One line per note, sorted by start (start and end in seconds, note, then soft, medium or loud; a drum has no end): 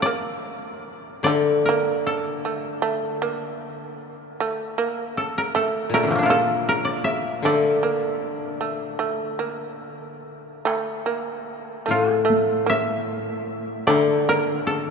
0.00 1.55 D4 soft
0.00 1.39 E4 soft
0.00 1.37 F4 soft
0.00 1.45 A#4 medium
0.00 1.24 D5 medium
0.06 0.86 A#3 soft
1.23 3.59 D3 soft
1.23 1.66 A3 medium
1.23 2.84 D5 medium
1.65 2.45 A#3 medium
1.65 2.13 A#4 medium
2.07 3.97 A4 medium
2.45 2.81 A3 soft
2.82 3.21 A3 medium
3.22 4.00 A#3 medium
4.40 4.78 A3 medium
4.78 5.54 A#3 medium
5.17 5.44 A4 medium
5.38 5.62 A#4 medium
5.55 5.92 A3 medium
5.55 6.00 A4 medium
5.90 7.43 A#2 soft
5.94 6.30 A3 medium
5.94 6.36 A#4 medium
6.03 6.29 D3 soft
6.07 6.21 E3 soft
6.07 6.29 F3 soft
6.11 6.75 A3 soft
6.11 6.36 A#3 soft
6.19 8.61 D4 soft
6.23 8.49 E4 soft
6.23 7.10 F4 soft
6.30 7.06 A#3 medium
6.30 6.75 A4 medium
6.69 8.52 A#4 medium
6.85 7.45 D5 medium
7.04 8.54 E5 medium
7.42 9.83 D3 soft
7.42 7.83 A3 medium
7.42 9.81 D5 medium
7.83 8.60 A#3 medium
8.61 8.98 A3 soft
8.99 9.39 A3 medium
9.39 10.24 A#3 soft
10.65 11.06 A3 medium
10.65 taiko rim soft
11.06 11.85 A#3 medium
11.86 13.88 A2 soft
11.86 12.24 A3 medium
11.91 12.16 F4 medium
12.16 13.81 A4 medium
12.25 12.66 A3 medium
12.30 taiko high soft
12.66 13.48 A#3 medium
12.66 14.19 E5 medium
13.87 14.90 D3 medium
13.87 14.28 A3 medium
13.87 14.90 D5 medium
13.87 taiko rim soft
14.29 14.90 A#3 medium
14.29 14.73 A#4 medium
14.67 14.90 A4 medium